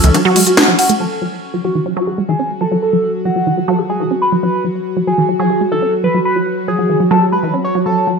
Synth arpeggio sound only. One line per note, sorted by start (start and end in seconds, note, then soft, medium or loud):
0.04 0.09 E3 medium
0.14 0.19 F#3 medium
0.25 0.30 F#3 loud
0.36 0.43 G#3 medium
0.47 0.52 F#4 medium
0.57 0.65 A3 medium
0.68 0.71 F#3 medium
0.89 0.94 A3 medium
1.00 1.05 F#3 medium
1.22 1.27 F#3 medium
1.54 1.61 F#3 medium
1.64 1.69 F#3 medium
1.75 1.80 E3 medium
1.86 1.91 F#3 medium
1.97 2.02 F#3 loud
2.07 2.12 G#4 medium
2.18 2.25 G#3 medium
2.29 2.36 E3 medium
2.39 2.44 C#4 medium
2.61 2.64 F#3 medium
2.72 2.77 F#3 medium
2.93 2.98 F#3 medium
3.25 3.33 F#3 medium
3.36 3.41 F#3 medium
3.47 3.52 E3 medium
3.57 3.62 F#3 medium
3.68 3.73 F#3 loud
3.79 3.84 G#4 medium
3.89 3.97 G#3 medium
4.00 4.08 E3 medium
4.11 4.16 C#4 medium
4.32 4.35 F#3 medium
4.43 4.48 F#3 medium
4.64 4.69 F#3 medium
4.97 5.04 F#3 medium
5.07 5.12 F#3 medium
5.18 5.23 E3 medium
5.29 5.34 F#3 medium
5.39 5.44 F#3 loud
5.50 5.55 G#4 medium
5.61 5.68 G#3 medium
5.72 5.79 E3 medium
5.82 5.87 C#4 medium
6.04 6.07 F#3 medium
6.14 6.19 F#3 medium
6.36 6.41 F#3 medium
6.68 6.75 F#3 medium
6.79 6.84 F#3 medium
6.89 6.94 E3 medium
7.00 7.05 F#3 medium
7.11 7.16 F#3 loud
7.22 7.27 G#4 medium
7.32 7.40 G#3 medium
7.43 7.50 E3 medium
7.54 7.59 C#4 medium
7.75 7.78 F#3 medium
7.86 7.91 F#3 medium
8.07 8.12 F#3 medium